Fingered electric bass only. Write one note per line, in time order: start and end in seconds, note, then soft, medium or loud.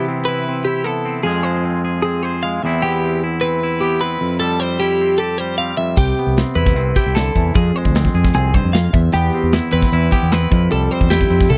5.98 6.13 C2 medium
6.27 6.42 C2 medium
6.56 6.76 E2 loud
6.76 6.91 C2 loud
7.06 7.29 C2 medium
7.35 7.51 E2 medium
7.55 7.71 F2 medium
7.85 8.08 D2 medium
8.14 8.30 F2 medium
8.34 8.57 C2 loud
8.64 8.87 F2 medium
8.93 9.09 E2 loud
9.14 9.29 E2 medium
9.43 9.59 E2 medium
9.73 9.81 E2 medium
9.92 10.08 E2 loud
10.23 10.45 E2 medium
10.52 10.67 F2 loud
10.72 10.87 C2 medium
11.01 11.24 E2 medium
11.30 11.46 F2 medium
11.50 11.58 C2 loud